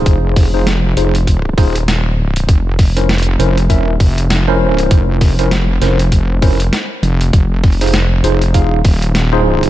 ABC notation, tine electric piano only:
X:1
M:4/4
L:1/16
Q:"Swing 16ths" 1/4=99
K:Fm
V:1 name="Tine electric piano"
[EFAc]3 [EFAc] z2 [EFAc] z3 [EFAc] z4 z | z3 [D=EBc] z2 [DEBc] z [DEB=e]2 z3 [DEBc]3- | [D=EBc]3 [DEBc] z2 [DEBc] z3 [DEBc] z4 z | z3 [EFAc] z2 [EFAc] z [EFAf]2 z3 [EFAc]3 |]